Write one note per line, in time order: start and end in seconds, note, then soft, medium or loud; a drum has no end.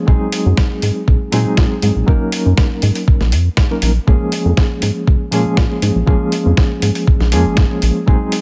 0.07 0.16 A#1 loud
0.07 1.29 F#3 medium
0.07 1.30 G#3 medium
0.07 1.30 C4 medium
0.07 1.30 D#4 medium
0.07 1.30 G#4 medium
0.07 kick loud
0.32 open hi-hat loud
0.46 0.54 F#2 loud
0.57 kick loud
0.57 snare loud
0.82 0.91 G#2 medium
0.82 open hi-hat medium
1.08 1.16 A#1 medium
1.08 kick loud
1.32 1.46 A#2 medium
1.32 2.05 F#3 medium
1.32 2.05 G#3 medium
1.32 2.05 C4 medium
1.32 2.05 D#4 medium
1.32 2.06 G#4 loud
1.32 open hi-hat loud
1.46 1.56 A#2 soft
1.57 1.66 A#2 loud
1.57 kick loud
1.57 snare loud
1.82 1.91 G#2 medium
1.82 open hi-hat loud
1.96 2.04 A#1 medium
2.07 2.16 A#1 loud
2.07 3.29 F#3 medium
2.07 3.30 A#3 medium
2.07 3.30 C#4 medium
2.07 3.30 D#4 medium
2.07 3.30 A#4 medium
2.07 kick loud
2.32 open hi-hat loud
2.46 2.54 F#2 loud
2.57 kick loud
2.57 snare loud
2.82 2.91 G#2 medium
2.82 open hi-hat loud
2.95 open hi-hat medium
3.08 kick loud
3.21 3.34 A#1 loud
3.21 snare soft
3.32 3.49 F2 medium
3.32 open hi-hat loud
3.57 kick loud
3.57 snare loud
3.71 3.90 F#3 medium
3.71 3.91 A#3 medium
3.71 3.91 C#4 medium
3.71 3.91 D#4 medium
3.71 3.91 A#4 medium
3.82 3.99 A#1 loud
3.82 open hi-hat loud
4.07 4.16 A#1 loud
4.07 5.30 F3 medium
4.07 5.30 G#3 medium
4.07 5.30 A#3 medium
4.07 5.30 C#4 medium
4.07 5.30 G#4 medium
4.07 kick loud
4.32 open hi-hat loud
4.45 4.53 F2 loud
4.57 kick loud
4.57 snare loud
4.82 4.91 G#2 medium
4.82 open hi-hat medium
5.07 5.16 C#2 medium
5.07 kick loud
5.31 5.45 A#2 medium
5.31 6.04 F3 medium
5.31 6.05 G#3 medium
5.31 6.05 A#3 medium
5.31 6.05 C#4 medium
5.31 6.05 G#4 medium
5.31 open hi-hat loud
5.46 5.55 A#2 soft
5.57 5.66 A#2 loud
5.57 kick loud
5.57 snare loud
5.82 5.91 G#2 loud
5.82 open hi-hat loud
5.96 6.03 A#1 medium
6.07 6.16 A#1 loud
6.07 7.29 F3 medium
6.07 7.30 G#3 medium
6.07 7.30 A#3 medium
6.07 7.30 C#4 medium
6.07 7.30 G#4 medium
6.07 kick loud
6.32 open hi-hat loud
6.46 6.53 F2 loud
6.57 kick loud
6.57 snare loud
6.82 6.91 G#2 medium
6.82 open hi-hat medium
6.95 open hi-hat medium
7.07 kick loud
7.20 7.34 A#1 loud
7.20 snare soft
7.32 7.45 F2 medium
7.32 8.04 F3 medium
7.32 8.05 G#3 medium
7.32 8.05 A#3 medium
7.32 8.05 C#4 medium
7.32 8.05 G#4 loud
7.32 open hi-hat loud
7.46 7.55 G#1 soft
7.57 7.66 G#1 loud
7.57 kick loud
7.57 snare loud
7.82 7.91 A#1 medium
7.82 open hi-hat medium
8.06 8.16 A#1 loud
8.06 8.41 F#3 medium
8.06 8.41 G#3 medium
8.06 8.41 C4 medium
8.06 8.41 D#4 medium
8.06 8.41 G#4 medium
8.06 kick loud
8.32 open hi-hat loud